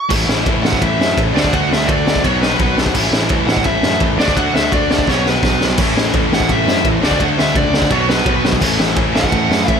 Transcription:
0.09 A1 A2 E3 A3 C#4 E4, kick, crash
0.27 A1, snare
0.46 A1, kick, ride
0.63 A1 F#5, snare
0.73 kick
0.81 A1 E5, kick, ride
0.97 F#2, snare
1.17 A1, kick, ride
1.34 D2 D3 A3 D4 F#4 D5, snare
1.44 kick
1.52 D2 F#5, kick, ride
1.70 D2 E5, snare
1.87 D2 D5, kick, ride
2.07 snare
2.15 kick
2.24 B1 B2 D#3 F#3 B3 F#4 C#5, kick, ride
2.41 B4, snare
2.59 B1, kick, ride
2.77 B1, snare
2.86 kick
2.94 A1 A2 E3 A3 C#4 E4, kick, crash
3.12 A1, snare
3.29 A1, kick, ride
3.47 A1 F#5, snare
3.57 kick
3.64 A1 E5, kick, ride
3.83 F#2, snare
4.00 A1, kick, ride
4.17 D2 D3 A3 D4 F#4 D5, snare
4.28 kick
4.36 D2 F#5, kick, ride
4.53 D2 E5, snare
4.72 D2 D5, kick, ride
4.90 D5, snare
4.99 kick
5.06 B1 B2 D#3 F#3 B3 F#4 C#5, kick, snare
5.26 B4, snare
5.43 B1, kick, snare
5.60 B1, snare
5.78 A1 A2 E3 A3 C#4 E4, kick, crash
5.95 A1, snare
6.13 A1, kick, ride
6.31 A1 F#5, snare
6.40 kick
6.48 A1 A2 E3 A3 E5, kick, ride
6.66 F#2, snare
6.84 A1, kick, ride
7.01 D2 D3 A3 D4 F#4 D5, snare
7.11 kick
7.20 D2 F#5, kick, ride
7.38 D2 E5, snare
7.55 C#2 D5, kick, ride
7.73 D3 A3 D4, snare
7.82 kick
7.90 B1 B2 D#3 F#3 B3 F#4 C#5, kick, ride
8.09 B4, snare
8.26 B1, kick, ride
8.44 B1, snare
8.52 kick
8.61 A1 A2 E3 A3 C#4 E4, kick, crash
8.79 A1, snare
8.96 A1, kick, ride
9.15 A1 F#5, snare
9.23 kick
9.32 A1 A2 E3 A3, kick, ride
9.50 F#2, snare
9.68 A1 E5, kick, ride

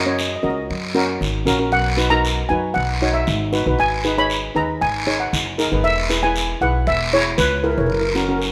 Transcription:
Already playing: F#2
0.06 C#4 F#4 C#5 D#5
0.13 D#5
0.19 D#5, short guiro
0.28 D#5
0.36 D#5
0.43 C#2 C#4 F#4 A#4 D#5
0.50 D#5
0.70 F#2, long guiro
0.95 C#4 F#4 A#4
1.21 G#1, short guiro
1.46 A#1 C#4 F#4 A#4, short guiro
1.59 C#4 F#4 A#4
1.72 B1 F#5, long guiro
1.97 D#4 F#4 B4, short guiro
2.10 D#4 F#4 A#4 A#5
2.25 short guiro
2.49 F#2 D#4 F#4 B4 G#5
2.74 B1 F#5, long guiro
3.02 D#4 F#4 C#5
3.14 E5
3.27 G#1, short guiro
3.52 D#4 F#4 B4, short guiro
3.66 B1 D#4 F#4 B4
3.79 G#1 G#5, long guiro
4.04 D#4 G#4 B4, short guiro
4.17 D#4 G#4 C#5 B5
4.30 short guiro
4.55 D#2 D#4 G#4 B4 A#5
4.81 G#1 G#5, long guiro
5.07 D#4 G#4 C#5
5.20 F#5
5.33 F#1, short guiro
5.58 D#4 G#4 A#4, short guiro
5.71 G#1 D#4 G#4 B4
5.84 E1 E5, long guiro
6.10 E4 G#4 B4, short guiro
6.23 E4 G#4 B4 G#5
6.36 short guiro
6.61 B1 E4 G#4 B4 F#5
6.87 E1 E5, long guiro
7.13 E4 G#4 C#5
7.38 C#2 B4, short guiro
7.64 E4 G#4 A#4 B4
7.71 A#4
7.78 E1 E4 G#4 A#4 C#5
7.86 F#1 A#4, long guiro
7.94 A#4
8.01 A#4
8.09 A#4
8.15 C#4 F#4 A#4, short guiro
8.24 A#4
8.28 C#4 F#4 A#4
8.39 A#4, short guiro
8.47 A#4

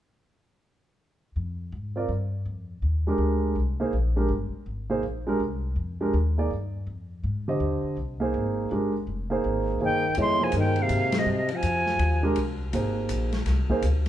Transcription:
1.36 F2
1.72 G#2
1.96 C4 F4 A#4 D5
2.09 G2
2.46 F2
2.82 D#2
3.07 G#3 D4 G4 A#4
3.18 D2
3.56 C2
3.80 A#3 D#4 G#4 C5
3.93 A#1
4.16 G#3 D4 G4 A#4
4.29 G1
4.52 muted upright bass stroke
4.66 G#1
4.90 A#3 D#4 G#4 C5
5.03 A#1
5.27 G#3 D4 G4 A#4
5.40 C2
5.76 F2
6.01 G#3 D4 G4 A#4
6.14 D#2
6.38 A#3 D#4 G#4 D5
6.51 G2
6.87 F2
7.24 G#2
7.48 D3 G4 C5 D#5
7.60 D#2
7.84 muted upright bass stroke
7.97 C2
8.20 A#3 D#4 G#4 C5
8.34 G#1
8.71 G1 G#3 D4 G4 A#4
9.07 F1
9.30 A#3 D#4 G#4 C5
9.44 G#1
9.80 G1 D#3 A#3 D#4 G#4 C5
9.85 G5
10.15 F2 G#3 B3 E4 A4 C#5, ride
10.21 C6
10.40 F3 A#3 D#4 G#4 C5
10.44 G#5
10.52 G2 D#3, hi-hat pedal, ride
10.59 G5
10.76 ride
10.80 C3 F5
10.89 G#2, hi-hat pedal, ride
11.12 snare, ride
11.17 C3 D#5
11.26 G#2
11.49 F3, ride
11.56 G#5
11.63 F2, hi-hat pedal, ride
11.86 snare
11.99 D#2, ride
12.23 G#3 D4 G4 A#4
12.36 C2, ride
12.73 G#1 A#3 D#4 G#4 C5, hi-hat pedal, ride
13.09 A#1, hi-hat pedal, ride
13.32 snare, ride
13.46 C2, snare, ride
13.69 A#3 D#4 G#4 C5, kick
13.82 D2, hi-hat pedal, ride

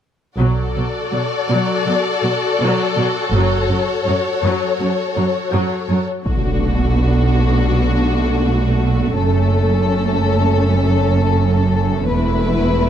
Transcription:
0.38 B1 B2 F#3 F#4 A4 D5
0.76 B2 F#3
1.12 B2 F#3
1.49 B2 F#3
1.86 B2 F#3
2.23 B2 F#3
2.60 B2 F#3
2.97 B2 F#3
3.33 F#1 F#2 F#3 C#5
3.70 F#2 F#3
4.07 F#2 F#3
4.43 F#2 F#3
4.80 F#2 F#3
5.17 F#2 F#3
5.53 F#2 F#3
5.89 F#2 F#3
6.25 B1 B2 A3 D4 F#4, impact
9.16 F#1 F#2 C#4 A4
12.09 E1 E2 A3 E4 B4

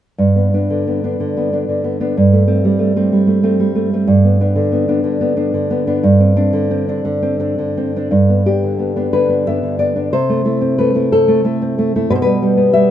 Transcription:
0.18 G2
0.36 B3
0.54 B3 D4
0.70 D3
0.87 B3
1.04 B3 D4
1.20 D3
1.37 B3
1.53 B3 D4
1.69 D3
1.84 B3
2.00 B3 D4
2.17 G2
2.33 A3
2.47 A3 C4
2.65 G3
2.79 A3
2.96 A3 C4
3.12 G3
3.27 A3
3.43 A3 C4
3.60 G3
3.75 A3
3.93 A3 C4
4.07 G2
4.24 B3
4.40 B3 D4
4.56 D3
4.72 B3
4.88 B3 D4
5.04 D3
5.21 B3
5.37 B3 D4
5.54 D3
5.70 B3
5.87 B3 D4
6.03 G2
6.20 C4
6.36 C4 D4
6.53 D3
6.70 C4
6.88 C4 D4
7.05 D3
7.22 C4
7.40 C4 D4
7.58 D3
7.77 C4
7.96 C4 D4
8.11 G2
8.29 B3
8.46 B3 D4 G4
8.63 D3
8.79 B3
8.96 B3 D4
9.13 D3 B4
9.29 B3
9.47 B3 D4 E5
9.63 D3
9.79 B3 D5
9.96 B3 D4
10.13 C3 C5
10.29 A3
10.45 A3 E4
10.61 C4
10.78 A3 B4
10.95 A3 E4
11.12 C4 A4
11.28 A3
11.45 A3 E4
11.62 C4
11.78 A3
11.96 A3 E4
12.10 B2 B4
12.15 C5
12.22 G3 B4
12.42 G3 G4
12.57 B3
12.73 G3 E5

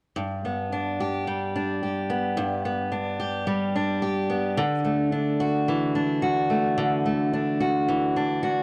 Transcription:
0.17 G2
0.45 B3
0.73 D4
1.00 G4
1.27 G3
1.55 D4
1.83 G4
2.09 B3
2.37 G2
2.65 B3
2.91 D4
3.19 G4
3.47 G3
3.75 D4
4.02 G4
4.30 B3
4.57 D3
4.85 A3
5.12 D4
5.40 F#4
5.68 E3
5.95 D4
6.22 F#4
6.50 A3
6.78 D3
7.06 A3
7.34 D4
7.61 F#4
7.89 E3
8.16 D4
8.43 F#4

